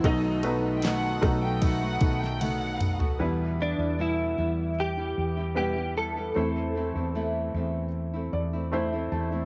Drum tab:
RD |x-x-x-x-x-x-x-x-|----------------|----------------|
SD |----o------o----|----------------|----------------|
T1 |------------o---|----------------|----------------|
T2 |--------------o-|----------------|----------------|
FT |---------------o|----------------|----------------|
BD |o-----o-o-o-----|----------------|----------------|